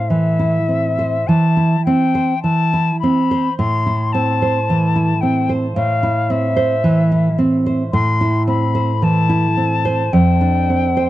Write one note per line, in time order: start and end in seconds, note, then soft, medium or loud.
0.00 1.24 A2 soft
0.00 0.27 C5 soft
0.00 0.11 F5 medium
0.09 0.58 E3 soft
0.09 1.29 E5 medium
0.39 0.87 E4 soft
0.69 1.16 C4 soft
0.99 1.45 C5 soft
1.27 1.75 E3 soft
1.27 1.84 A5 medium
1.57 2.04 E4 soft
1.85 2.33 C4 medium
1.85 2.42 G5 medium
2.15 2.61 C5 soft
2.43 2.90 E3 soft
2.43 2.99 A5 medium
2.73 3.19 E4 soft
3.00 3.48 C4 soft
3.00 3.57 B5 medium
3.31 3.59 C5 medium
3.58 5.72 A2 medium
3.58 4.14 C6 medium
3.86 4.31 E4 soft
4.13 4.58 C4 soft
4.13 5.22 A5 medium
4.42 4.85 C5 soft
4.70 5.13 E3 soft
4.96 5.39 E4 soft
5.21 5.66 C4 soft
5.21 5.51 G5 medium
5.49 5.93 C5 soft
5.76 7.89 A2 medium
5.76 6.33 F5 medium
6.03 6.47 E4 soft
6.30 6.74 C4 medium
6.30 7.40 E5 medium
6.56 7.01 C5 medium
6.84 7.28 E3 medium
7.12 7.55 E4 soft
7.38 7.82 C4 medium
7.66 7.93 C5 soft
7.93 10.08 A2 medium
7.93 8.43 C6 medium
8.21 8.64 E4 soft
8.47 8.91 C4 soft
8.47 9.05 B5 medium
8.75 9.18 C5 medium
9.02 9.46 E3 soft
9.02 10.15 A5 medium
9.29 9.73 E4 soft
9.57 10.01 C4 soft
9.85 10.13 C5 medium
10.13 11.10 F2 medium
10.13 11.10 G5 medium
10.41 10.86 D4 soft
10.70 11.10 C4 soft
10.97 11.10 C5 soft